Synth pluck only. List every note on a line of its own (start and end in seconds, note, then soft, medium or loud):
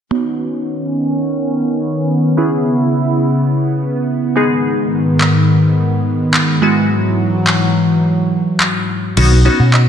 0.11 2.34 B3 medium
0.11 2.34 C#4 medium
0.11 2.34 D#4 medium
0.11 2.34 F#4 medium
2.37 4.32 B3 medium
2.37 4.32 C#4 medium
2.37 4.32 E4 medium
2.37 4.32 G#4 medium
4.36 6.58 G#3 medium
4.36 6.58 B3 medium
4.36 6.59 D#4 medium
4.36 6.59 G#4 medium
6.62 8.85 G#3 medium
6.62 8.85 B3 medium
6.62 8.85 E4 medium
6.62 8.85 F#4 medium
9.17 9.39 B3 medium
9.17 9.39 C#4 medium
9.17 9.39 D#4 medium
9.17 9.39 F#4 medium
9.45 9.89 B3 medium
9.45 9.89 C#4 medium
9.45 9.89 D#4 medium
9.45 9.89 F#4 medium